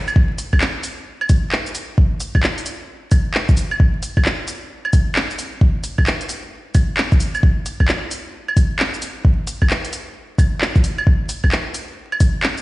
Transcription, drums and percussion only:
0.08 claves medium
0.08 shaker soft
0.16 kick loud
0.38 open hi-hat medium
0.38 shaker medium
0.53 kick medium
0.53 claves medium
0.61 clap loud
0.61 shaker soft
0.83 open hi-hat medium
0.83 shaker medium
1.21 claves medium
1.29 kick loud
1.29 open hi-hat medium
1.29 shaker medium
1.52 clap loud
1.66 shaker soft
1.75 open hi-hat medium
1.75 shaker medium
1.98 kick loud
2.20 open hi-hat medium
2.20 shaker medium
2.35 kick medium
2.35 claves medium
2.43 clap loud
2.43 shaker soft
2.58 open hi-hat soft
2.66 open hi-hat medium
2.66 shaker medium
3.11 kick loud
3.11 open hi-hat medium
3.11 claves soft
3.11 shaker medium
3.34 clap loud
3.49 kick loud
3.49 shaker soft
3.57 open hi-hat medium
3.57 shaker medium
3.71 claves medium
3.80 kick loud
4.03 open hi-hat medium
4.03 shaker medium
4.17 kick medium
4.17 claves medium
4.25 clap loud
4.25 shaker soft
4.48 open hi-hat medium
4.48 shaker medium
4.85 claves medium
4.93 kick loud
4.93 open hi-hat medium
4.93 shaker medium
5.16 clap loud
5.30 shaker soft
5.39 open hi-hat medium
5.39 shaker medium
5.61 kick loud
5.84 open hi-hat medium
5.84 shaker medium
5.98 kick medium
5.98 claves medium
6.07 clap loud
6.07 shaker soft
6.21 open hi-hat soft
6.29 open hi-hat medium
6.29 shaker medium
6.75 kick loud
6.75 open hi-hat medium
6.75 claves soft
6.75 shaker medium
6.97 clap loud
7.12 kick loud
7.12 shaker soft
7.20 open hi-hat medium
7.20 shaker medium
7.35 claves medium
7.35 shaker soft
7.43 kick loud
7.66 open hi-hat medium
7.66 shaker medium
7.80 kick medium
7.80 claves soft
7.88 clap loud
7.88 shaker soft
8.11 open hi-hat medium
8.11 shaker medium
8.48 claves medium
8.57 kick loud
8.57 open hi-hat medium
8.57 shaker medium
8.79 clap loud
8.94 shaker soft
9.02 open hi-hat medium
9.02 shaker medium
9.25 kick loud
9.47 open hi-hat medium
9.47 shaker medium
9.62 kick medium
9.62 claves medium
9.70 clap loud
9.70 shaker soft
9.85 open hi-hat soft
9.93 open hi-hat medium
9.93 shaker medium
10.38 kick loud
10.38 open hi-hat medium
10.38 claves soft
10.38 shaker medium
10.61 clap loud
10.76 kick loud
10.76 shaker soft
10.84 open hi-hat medium
10.84 shaker medium
10.98 claves medium
11.07 kick loud
11.29 open hi-hat medium
11.29 shaker medium
11.44 kick medium
11.44 claves medium
11.52 clap loud
11.52 shaker soft
11.74 open hi-hat medium
11.74 shaker medium
12.12 claves medium
12.20 kick loud
12.20 open hi-hat medium
12.20 shaker medium
12.43 clap loud
12.58 shaker soft

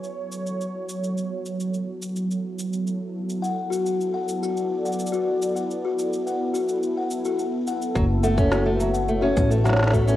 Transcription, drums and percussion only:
0.04 cabasa soft
0.32 cabasa medium
0.47 cabasa soft
0.61 cabasa soft
0.89 cabasa medium
1.04 cabasa soft
1.18 cabasa soft
1.46 cabasa medium
1.60 cabasa soft
1.74 cabasa soft
2.02 cabasa medium
2.16 cabasa soft
2.31 cabasa soft
2.59 cabasa medium
2.73 cabasa soft
2.87 cabasa soft
3.30 cabasa soft
3.44 cabasa soft
3.73 cabasa medium
3.86 cabasa soft
4.01 cabasa soft
4.29 cabasa medium
4.43 cabasa soft
4.57 cabasa soft
4.86 cabasa soft
4.92 cabasa soft
4.99 cabasa soft
5.06 cabasa medium
5.13 cabasa soft
5.42 cabasa medium
5.56 cabasa soft
5.71 cabasa soft
5.99 cabasa medium
6.13 cabasa soft
6.27 cabasa soft
6.55 cabasa medium
6.69 cabasa soft
6.83 cabasa soft
7.11 cabasa medium
7.25 cabasa soft
7.39 cabasa soft
7.67 cabasa medium
7.82 cabasa soft
7.96 kick loud
7.96 cabasa soft
8.24 cabasa medium
8.38 kick loud
8.38 cabasa soft
8.52 snare loud
8.52 cabasa soft
8.80 cabasa medium
8.94 cabasa soft
9.08 cabasa soft
9.37 kick loud
9.37 cabasa medium
9.51 cabasa soft
9.66 snare soft
9.66 cabasa soft
9.69 snare medium
9.73 snare medium
9.76 snare medium
9.79 snare medium
9.83 snare medium
9.87 snare medium
9.90 kick medium
9.90 snare medium
9.90 cabasa medium
10.08 cabasa soft

